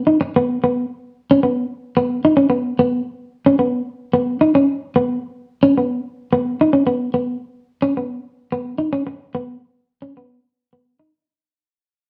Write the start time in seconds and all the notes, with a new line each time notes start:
0.07 D#4
0.21 muted clean electric guitar stroke
0.36 B3
0.64 B3
1.31 C#4
1.43 B3
1.97 B3
2.25 D#4
2.37 C#4
2.50 B3
2.79 B3
3.46 C#4
3.59 B3
4.13 B3
4.41 D#4
4.55 C#4
4.96 B3
5.63 C#4
5.78 B3
6.33 B3
6.61 D#4
6.73 C#4
6.87 B3
7.14 B3
7.82 C#4
7.97 B3
8.52 B3
8.78 D#4
8.93 C#4
9.07 muted clean electric guitar stroke
9.35 B3
10.02 C#4
10.17 B3
10.73 B3
11.00 D#4